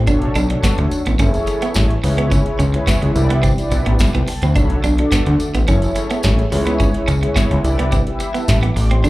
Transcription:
0.07 analog synth bass B1, analog polysynth D4 F#4 A4 C#5, clean electric guitar D4, kick, closed hi-hat, tambourine
0.22 closed hi-hat
0.35 analog synth bass B1, clean electric guitar D4, closed hi-hat, tambourine
0.50 analog polysynth D4 F#4 A4 C#5, muted clean electric guitar stroke, closed hi-hat
0.63 clean electric guitar B3, kick, snare, closed hi-hat, tambourine
0.78 analog synth bass D2, muted clean electric guitar stroke, closed hi-hat
0.91 closed hi-hat, tambourine
1.06 analog synth bass A1, clean electric guitar B3, closed hi-hat, tambourine
1.19 analog synth bass F#1, clean electric guitar C#4, analog polysynth E4 G#4 A4 C#5, kick, closed hi-hat, tambourine
1.34 analog polysynth E4 G#4 A4 C#5, closed hi-hat, tambourine
1.47 muted clean electric guitar stroke, closed hi-hat, tambourine
1.62 clean electric guitar B3, closed hi-hat, tambourine
1.74 analog synth bass A1, clean electric guitar C#4, kick, snare, closed hi-hat, tambourine
1.90 closed hi-hat
2.03 analog synth bass C#2, analog polysynth E4 G#4 B4 C#5, muted clean electric guitar stroke, open hi-hat, tambourine
2.18 clean electric guitar B3, closed hi-hat
2.31 clean electric guitar C#4, kick, closed hi-hat, tambourine
2.46 closed hi-hat
2.59 analog synth bass C#2, clean electric guitar C#4, closed hi-hat, tambourine
2.74 analog polysynth E4 G#4 B4 C#5, muted clean electric guitar stroke, closed hi-hat
2.87 clean electric guitar B3, kick, snare, closed hi-hat, tambourine
3.02 analog synth bass C#2, muted clean electric guitar stroke, closed hi-hat
3.15 analog synth bass C2, analog polysynth E4 G4 B4 D5, closed hi-hat, tambourine
3.30 clean electric guitar B3, closed hi-hat
3.43 clean electric guitar C4, kick, closed hi-hat, tambourine
3.58 analog polysynth E4 G4 B4 D5, closed hi-hat, tambourine
3.71 analog synth bass B1, muted clean electric guitar stroke, closed hi-hat, tambourine
3.86 analog synth bass A1, clean electric guitar B3, closed hi-hat
3.99 analog synth bass B1, analog polysynth F#5, kick, snare, closed hi-hat, tambourine
4.14 analog synth bass C2, clean electric guitar B3, analog polysynth G5, closed hi-hat
4.28 analog polysynth A5, muted clean electric guitar stroke, open hi-hat, tambourine
4.42 analog synth bass D2, clean electric guitar C4, analog polysynth B5, closed hi-hat, tambourine
4.55 analog synth bass B1, analog polysynth D4 F#4 A4 C#5, clean electric guitar D4, kick, closed hi-hat, tambourine
4.70 closed hi-hat
4.83 analog synth bass B1, clean electric guitar D4, closed hi-hat, tambourine
4.98 analog polysynth D4 F#4 A4 D5, muted clean electric guitar stroke, closed hi-hat
5.11 clean electric guitar B3, kick, snare, closed hi-hat, tambourine
5.26 analog synth bass D2, muted clean electric guitar stroke, closed hi-hat
5.40 closed hi-hat, tambourine
5.54 analog synth bass A1, clean electric guitar B3, closed hi-hat, tambourine
5.67 analog synth bass F#1, clean electric guitar C#4, analog polysynth E4 G#4 A4 C#5, kick, closed hi-hat, tambourine
5.82 analog polysynth E4 G#4 A4 C#5, closed hi-hat, tambourine
5.95 muted clean electric guitar stroke, closed hi-hat, tambourine
6.10 clean electric guitar B3, closed hi-hat, tambourine
6.23 analog synth bass A1, clean electric guitar C#4, kick, snare, closed hi-hat, tambourine
6.39 closed hi-hat
6.51 analog synth bass C#2, analog polysynth E4 G#4 B4 C#5, muted clean electric guitar stroke, open hi-hat, tambourine
6.67 clean electric guitar B3, closed hi-hat, tambourine
6.80 clean electric guitar C#4, kick, closed hi-hat, tambourine
6.94 closed hi-hat
7.08 analog synth bass C#2, clean electric guitar C#4, closed hi-hat, tambourine
7.23 analog polysynth E4 G#4 B4 C#5, muted clean electric guitar stroke, closed hi-hat
7.36 clean electric guitar B3, kick, snare, closed hi-hat, tambourine
7.51 analog synth bass C#2, muted clean electric guitar stroke, closed hi-hat
7.64 analog synth bass C2, analog polysynth E4 G4 B4 D5, closed hi-hat, tambourine
7.79 clean electric guitar B3, closed hi-hat
7.92 clean electric guitar C4, kick, closed hi-hat, tambourine
8.07 analog polysynth E4 G4 B4 E5, closed hi-hat
8.20 muted clean electric guitar stroke, closed hi-hat, tambourine
8.34 clean electric guitar B3, analog polysynth A5, closed hi-hat, tambourine
8.48 analog synth bass A1, analog polysynth B5, kick, snare, closed hi-hat, tambourine
8.63 clean electric guitar B3, analog polysynth D6, closed hi-hat
8.76 analog synth bass A1, muted clean electric guitar stroke, open hi-hat, tambourine
8.91 clean electric guitar C4, analog polysynth C6, closed hi-hat
9.04 analog synth bass B1, analog polysynth D4 F#4 A4 C#5, clean electric guitar D4, kick, closed hi-hat, tambourine

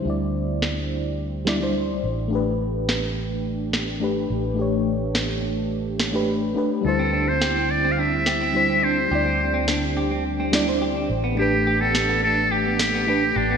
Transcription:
Already playing: analog synth pad D3 C4 E4 G4, fm electric piano G3 D4 E4 C5
0.02 fretless electric bass D2, fm electric piano G3 D4
0.07 fm electric piano E4 D5
0.62 snare
1.45 fm electric piano G3 D4 E4 D5, snare
1.60 fm electric piano G3 D4 E4 C5
2.04 fretless electric bass A1, analog synth pad A3 D4
2.28 fm electric piano A3 D4
2.33 fm electric piano G4 B4
2.89 snare
3.73 snare
4.00 fm electric piano A3 D4 G4 B4
4.30 fretless electric bass A1
4.54 fm electric piano A3 D4
4.59 fm electric piano G4 C#5
5.15 snare
6.00 snare
6.12 fm electric piano A3 D4 G4 B4
6.54 fm electric piano A3 D4 G4 B4
6.81 fretless electric bass D2, analog synth pad D3 C4 E4, fm electric piano G3 D4
6.86 fm electric piano E4 C5, muted trumpet A4
6.99 clean electric guitar C4
7.13 clean electric guitar D4
7.28 muted trumpet C5
7.41 clean electric guitar G4, snare
7.56 clean electric guitar C4
7.71 muted trumpet D5
7.85 clean electric guitar C4
7.92 muted trumpet F5
7.99 clean electric guitar D4, muted trumpet E5
8.26 clean electric guitar G4, snare
8.41 clean electric guitar C4
8.53 fm electric piano G3 D4 E4 C5
8.70 clean electric guitar C4
8.84 clean electric guitar D4, muted trumpet C5
9.08 fretless electric bass D2, fm electric piano G3 D4, analog synth pad D4, clean electric guitar G4
9.13 fm electric piano E4 D5
9.26 clean electric guitar C4
9.54 clean electric guitar C4
9.68 clean electric guitar D4, snare
9.97 clean electric guitar G4
10.11 clean electric guitar C4
10.40 clean electric guitar C4
10.52 fm electric piano G3 D4 E4 D5, clean electric guitar D4, snare
10.65 fm electric piano G3 D4 E4 C5
10.82 clean electric guitar G4
10.96 clean electric guitar C4
11.10 fretless electric bass A1, analog synth pad A3
11.24 clean electric guitar B3
11.35 fm electric piano A3 D4, clean electric guitar D4
11.39 fm electric piano G4 B4, muted trumpet G4
11.67 clean electric guitar G4
11.81 clean electric guitar B3, muted trumpet A4
11.95 snare
12.09 clean electric guitar B3
12.23 clean electric guitar D4, muted trumpet A4
12.51 muted trumpet G4, clean electric guitar G4
12.66 clean electric guitar B3
12.79 snare
12.94 clean electric guitar B3
13.06 fm electric piano A3 D4 G4 B4, clean electric guitar D4
13.36 fretless electric bass A1, muted trumpet D4, clean electric guitar G4
13.51 clean electric guitar B3

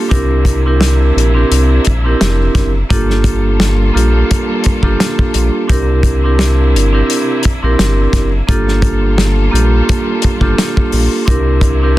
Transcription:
0.09 analog synth bass C2, vibraphone C4 D4 E4 G4 A#4, string section D4, kick, closed hi-hat
0.13 string section C3 A#3 E4
0.45 kick, closed hi-hat
0.65 vibraphone C4 D4 E4 G4 A#4
0.81 snare, closed hi-hat
1.16 analog synth bass A#1, closed hi-hat
1.34 vibraphone C4 D4 E4 G4 A#4
1.51 analog synth bass C2, closed hi-hat
1.85 analog synth bass A#1, kick, closed hi-hat
2.04 vibraphone C4 D4 E4 G4 A#4
2.21 analog synth bass F1, snare, closed hi-hat
2.55 analog synth bass F#1, kick, snare, closed hi-hat
2.89 analog synth bass G1, string section G3 A#3 F4 A4, vibraphone A#3 D4 F4 G4 A4, kick, closed hi-hat
3.10 snare
3.24 kick, closed hi-hat
3.60 snare, closed hi-hat
3.93 analog synth bass A#1, vibraphone A#3 D4 F4 G4 A4
3.97 closed hi-hat
4.31 kick, closed hi-hat
4.64 kick, closed hi-hat
4.82 analog synth bass G1, vibraphone A#3 D4 F4 G4 A4, kick
5.00 snare, closed hi-hat
5.19 kick
5.34 analog synth bass A#1, closed hi-hat
5.67 analog synth bass C2, string section C3 A#3 D4 E4, vibraphone C4 D4 E4 G4 A#4, kick, closed hi-hat
6.03 kick, closed hi-hat
6.24 vibraphone C4 D4 E4 G4 A#4
6.39 snare, closed hi-hat
6.74 analog synth bass G1, closed hi-hat
6.92 vibraphone C4 D4 E4 G4 A#4
7.10 closed hi-hat
7.43 kick, closed hi-hat
7.62 analog synth bass A#1, vibraphone C4 D4 E4 G4 A#4
7.79 analog synth bass G1, snare, closed hi-hat
8.13 analog synth bass F#1, kick, snare, closed hi-hat
8.47 analog synth bass G1, string section G3 A#3 F4 A4, vibraphone A#3 D4 F4 G4 A4, kick, closed hi-hat
8.68 snare
8.82 kick, closed hi-hat
9.18 snare, closed hi-hat
9.51 analog synth bass A#1, vibraphone A#3 D4 F4 G4 A4
9.55 closed hi-hat
9.89 kick, closed hi-hat
10.22 kick, closed hi-hat
10.40 analog synth bass G1, vibraphone A#3 D4 F4 G4 A4, kick
10.58 snare, closed hi-hat
10.77 kick
10.92 analog synth bass A#1, open hi-hat
11.25 analog synth bass C2, string section C3, vibraphone C4 D4 E4 G4 A#4, kick, closed hi-hat
11.29 string section A#3 D4 E4
11.61 kick, closed hi-hat
11.82 vibraphone C4 D4 E4 G4 A#4

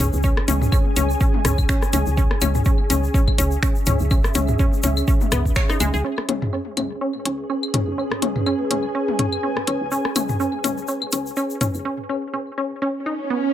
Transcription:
Already playing: ambient pad C#4 G#4 G#5
0.00 closed hi-hat, mid tom, shaker
0.13 fm bass C#2, shaker
0.23 synth pluck C#4, kick, shaker
0.37 cross-stick
0.48 fm bass C#2, synth pluck C#4, closed hi-hat, high tom, shaker
0.61 mid tom, shaker
0.72 synth pluck C#4, kick, claves, shaker
0.96 fm bass C#2, synth pluck C#4, closed hi-hat, high tom, shaker
1.10 shaker
1.20 synth pluck C#4, kick, shaker
1.34 high tom
1.45 fm bass C#2, synth pluck C#4, cross-stick, closed hi-hat, mid tom, shaker
1.58 kick, claves, shaker
1.69 synth pluck C#4, finger snap, kick, shaker
1.82 cross-stick, shaker
1.93 fm bass C#2, synth pluck C#4, closed hi-hat, high tom, shaker
2.06 fm bass C#2, shaker
2.17 synth pluck C#4, kick, shaker
2.31 cross-stick
2.41 fm bass C#2, synth pluck C#4, closed hi-hat, high tom, claves, shaker
2.55 mid tom, shaker
2.65 synth pluck C#4, kick, shaker
2.90 fm bass C#2, synth pluck C#4, closed hi-hat, high tom, shaker
2.96 ambient pad E5
3.04 shaker
3.14 synth pluck C#4, kick, shaker
3.28 kick, claves
3.38 fm bass C#2, synth pluck C#4, closed hi-hat, shaker
3.51 shaker
3.63 synth pluck C#4, finger snap, kick, shaker
3.75 shaker
3.86 fm bass C#2, synth pluck C#4, closed hi-hat, mid tom, shaker
3.99 fm bass C#2, shaker
4.11 synth pluck C#4, kick, claves, shaker
4.24 cross-stick, shaker
4.35 fm bass C#2, synth pluck C#4, closed hi-hat, high tom, shaker
4.48 mid tom, shaker
4.59 synth pluck C#4, kick, shaker
4.73 shaker
4.83 fm bass C#2, synth pluck C#4, closed hi-hat, high tom, shaker
4.97 claves, shaker
5.08 synth pluck C#4, kick, shaker
5.21 high tom, shaker
5.32 fm bass C#2, synth pluck B3, cross-stick, closed hi-hat, mid tom, shaker
5.45 kick, shaker
5.55 synth pluck C#5, finger snap, kick, shaker
5.70 synth pluck D#4, cross-stick, shaker
5.80 fm bass C#2, synth pluck G#3, closed hi-hat, high tom, claves, shaker
5.94 fm bass C#2, synth pluck G#4, shaker
6.04 synth pluck C#4, ambient pad C#4, synth drone B4
6.18 cross-stick
6.26 fm bass C#2, synth pluck C#4, ambient pad G#4, closed hi-hat, high tom
6.42 mid tom
6.53 synth pluck C#4
6.77 fm bass C#2, synth pluck C#4, closed hi-hat, high tom, claves
7.01 synth pluck C#4
7.25 fm bass C#2, synth pluck C#4, closed hi-hat
7.47 synth pluck C#4, ambient pad G#5
7.63 claves
7.74 fm bass C#2, synth pluck C#4, closed hi-hat, mid tom
7.87 fm bass C#2
7.98 synth pluck C#4
8.11 cross-stick
8.22 fm bass C#2, synth pluck C#4, closed hi-hat, high tom
8.36 mid tom
8.46 synth pluck C#4, claves
8.71 fm bass C#2, synth pluck C#4, closed hi-hat, high tom
8.95 synth pluck C#4
9.08 high tom
9.19 fm bass C#2, synth pluck C#4, closed hi-hat, mid tom
9.32 claves
9.43 synth pluck C#4
9.57 cross-stick
9.67 fm bass C#2, synth pluck C#4, closed hi-hat
9.81 fm bass C#2
9.92 synth pluck C#4, shaker
10.05 cross-stick
10.16 fm bass C#2, synth pluck C#4, closed hi-hat, high tom, claves, shaker
10.29 mid tom, shaker
10.40 synth pluck C#4, shaker
10.64 fm bass C#2, synth pluck C#4, closed hi-hat, high tom, shaker
10.78 shaker
10.88 synth pluck C#4, shaker
11.02 claves
11.12 fm bass C#2, synth pluck C#4, closed hi-hat, shaker
11.26 shaker
11.36 synth pluck C#4, shaker
11.50 shaker
11.61 fm bass C#2, synth pluck C#4, closed hi-hat, mid tom, shaker
11.74 fm bass C#2, shaker
11.85 synth pluck C#4
12.09 synth pluck C#4
12.34 synth pluck C#4
12.58 synth pluck C#4
12.82 synth pluck C#4, swell
13.06 synth pluck D#4
13.30 synth pluck B3

